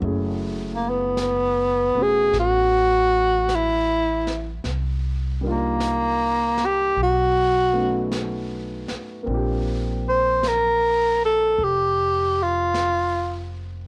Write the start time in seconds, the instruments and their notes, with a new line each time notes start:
0.00 upright bass F#1, grand piano F#3 A3 C#4 E4, brush sweep
0.04 grand piano G#4
0.75 tenor saxophone A#3
0.90 tenor saxophone B3
1.17 brush sweep, snare, hi-hat pedal
1.95 upright bass E1, grand piano A3 B3 C#4 F#4
2.03 tenor saxophone G#4
2.33 upright bass A1, brush sweep, snare
2.40 tenor saxophone F#4
3.49 brush sweep, snare, hi-hat pedal
3.55 tenor saxophone E4
4.27 snare
4.64 upright bass C2, brush sweep, snare
5.41 grand piano G3 A#3 D4
5.45 grand piano D#4 F4
5.50 tenor saxophone A#3
5.80 brush sweep, snare, hi-hat pedal
6.58 snare
6.66 tenor saxophone G4
6.95 upright bass B1, brush sweep
7.03 tenor saxophone F#4
7.73 grand piano A3 B3 C#4 D#4
7.79 grand piano F#4
8.12 brush sweep, snare, hi-hat pedal
8.88 muted upright bass stroke, snare
9.23 grand piano A#3 C4, brush sweep
9.27 upright bass A#1, grand piano D4 F4
9.34 grand piano G4
10.09 tenor saxophone C5
10.43 brush sweep, snare, hi-hat pedal
10.48 tenor saxophone A#4
11.25 tenor saxophone A4
11.58 upright bass F1, brush sweep
11.64 tenor saxophone G4
12.42 tenor saxophone F4
12.74 brush sweep, snare, hi-hat pedal